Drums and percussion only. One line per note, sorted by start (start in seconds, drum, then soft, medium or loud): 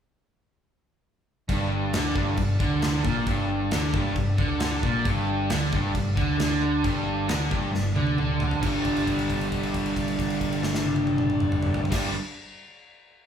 1.49 kick loud
1.49 crash medium
1.93 snare loud
1.93 crash medium
2.16 kick loud
2.37 kick medium
2.37 crash medium
2.60 kick loud
2.82 snare loud
2.82 crash medium
3.05 kick loud
3.27 kick medium
3.27 crash medium
3.71 snare loud
3.71 crash medium
3.94 kick medium
4.16 kick medium
4.16 crash medium
4.38 kick loud
4.60 snare loud
4.60 crash medium
4.83 kick loud
5.05 kick loud
5.05 crash medium
5.50 snare loud
5.50 crash medium
5.73 kick medium
5.95 kick medium
5.95 crash medium
6.17 kick loud
6.39 snare loud
6.39 crash medium
6.84 kick loud
6.84 crash medium
7.29 snare loud
7.29 crash medium
7.51 kick loud
7.75 snare medium
7.96 high tom medium
8.07 high tom medium
8.18 mid tom medium
8.40 floor tom loud
8.51 floor tom medium
8.63 kick medium
8.63 crash medium
8.85 kick medium
8.85 crash soft
8.97 crash soft
9.07 kick medium
9.07 crash soft
9.19 crash soft
9.30 kick medium
9.30 crash soft
9.41 crash soft
9.52 kick medium
9.52 crash soft
9.63 crash soft
9.74 kick medium
9.74 crash soft
9.86 crash soft
9.96 kick medium
9.96 crash medium
10.08 crash soft
10.19 kick medium
10.19 crash medium
10.30 crash medium
10.41 kick medium
10.41 crash soft
10.53 crash soft
10.63 snare medium
10.75 snare medium
10.86 high tom medium
10.96 high tom medium
11.07 high tom medium
11.18 mid tom loud
11.30 mid tom loud
11.40 mid tom medium
11.52 mid tom loud
11.63 mid tom loud
11.74 floor tom loud
11.85 floor tom medium
11.92 kick loud
11.92 snare medium
11.92 crash loud